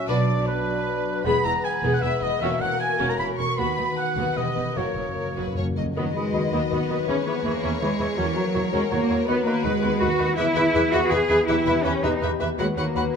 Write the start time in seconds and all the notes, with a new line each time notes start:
Already playing: A#3 C#4 F#4
0.08 B1 B2 F#3 D4 F#4 B4 D5
0.46 F#3 D4 F#4 B4
0.67 D5
0.87 B4
1.06 F#4
1.25 E1 E2 E3 G#3 B3 E4 G#4 B4 B5
1.45 E1 E2 B3 E4 A#5
1.64 G#4 G#5
1.83 E1 E2 B3 G#4 B4
1.93 F#5
2.02 E1 E2 B3 E4 G#4 E5
2.22 E1 E2 B3 D#5
2.40 E1 E2 E3 A#3 C#4 F#4 A#4 E5
2.60 E1 E2 A#3 C#4 E4 F#5
2.80 F#4 G#5
3.00 E1 E2 C#4 F#4 C#5
3.09 A#5
3.19 E1 E2 C#4 E4 A#4 B5
3.38 E1 E2 C#4 F#4 C#6
3.58 D#2 D#3 B3 F#4 B4 B5
3.78 D#2 B3 D#4
3.97 F#4 F#5
4.17 D#2 B3 F#4 B4
4.37 E1 E2 E3 B3 E4 G4 D#5
4.56 E1 E2 B3 G4 B4
4.76 F#1 F#2 F#3 A#3 F#4 A#4 C#5
4.85 F#2
4.93 F#1 F#2 C#3 F#3
4.97 F#2 C#4
5.08 F#2
5.16 F#2 F#4 A#4
5.23 F#2
5.32 F#2
5.37 F#1 F#2 F#3 F#4 A#4 B4
5.47 F#2
5.55 F#1 F#2 F#3 C#4 F#4 C#5
5.63 F#2
5.70 F#2
5.77 F#1 F#2 F#3 A#3 D#5
5.86 F#2
5.96 D#2 D#3 F#3 B3 F#4 B4 D#5 B5
6.06 D#4
6.15 D#3 F#3 G#3 F#4 D#5 B5
6.25 F#4
6.34 D#2 D#3 D#4 F#4 B4 D#5 B5
6.44 F#4
6.52 D#2 D#3 A#3 B3 F#4 D#5 F#5 B5
6.62 B5
6.71 D#2 D#3 B3 F#4 D#5 F#5 B5
6.81 F#4
6.89 D#2 D#3 D#4 F#4 B4 D#5 B5
6.99 F#4
7.08 E2 E3 C#4 G#4 C#5 B5
7.18 G#3
7.26 E3 B3 E4 G#4 C#5 B5
7.36 B4
7.44 E2 E3 A#3 E4 G#4 C#5 B5
7.55 E5
7.63 E2 E3 C#4 G#4 C#5 B5
7.73 G#5
7.81 E2 E3 G#3 G#4 C#5 B5
7.91 E5
7.99 E2 E3 E4 G#4 C#5 B5
8.09 B4
8.18 E2 E3 F#3 C#4 F#4 A#4 C#5 A#5
8.27 A#3
8.36 F#3 C#4 F#4 C#5 A#5
8.46 F#4
8.54 E2 F#3 E4 F#4 A#4 C#5 A#5
8.64 C#5
8.73 E2 F#3 G#3 C#4 F#4 C#5 F#5 A#5
8.82 A#5
8.91 E2 F#3 A#3 F#4 C#5 F#5 A#5
9.01 C#5
9.09 E2 F#3 E4 F#4 A#4 C#5 A#5
9.19 F#4
9.27 D#2 D#3 B3 F#4 B4 B5
9.37 D#4
9.46 D#3 A#3 B3 F#4 B4 B5
9.56 F#4
9.63 D#2 D#3 G#3 D#4 F#4 B4 B5
9.74 F#4
9.81 D#2 D#3 B3 F#4 B4 F#5 B5
9.92 B5
10.00 D#2 D#3 F#4 B4 F#5 B5
10.10 B4
10.19 D#2 D#3 D#4 F#4 B4 B5
10.28 B3
10.37 E2 E3 E4 G#4 B4 E5 B5
10.47 E4
10.55 E2 E3 B3 G#4 B4 E5 B5
10.74 E2 E3 G#4 B4 E5 B5
10.92 E2 E3 F#4 G#4 B4 E5 B5
11.02 B5
11.10 E2 E3 G#4 B4 E5 B5
11.21 B4
11.29 E2 E3 G#4 B4 E5 B5
11.39 B3
11.47 E2 E3 E4 G4 B4 E5 B5
11.58 E4
11.66 E2 E3 B3 G4 B4 E5 B5
11.76 G4
11.84 E2 E3 C#4 G4 B4 E5 B5
11.94 G4
12.03 E2 E3 D#4 G4 B4 E5 B5
12.13 B5
12.22 E2 E3 G4 B4 E5 G5 B5
12.31 B4
12.40 E2 E3 G4 B4 E5 B5
12.49 B3
12.58 D#2 D#3 F#3 G#3 F#4 B4 F#5 B5
12.68 D#4
12.77 D#2 F#3 A#3 B3 F#4 B4 F#5 B5
12.86 F#4
12.95 D#2 F#3 F#4 B4 F#5 B5
13.05 F#4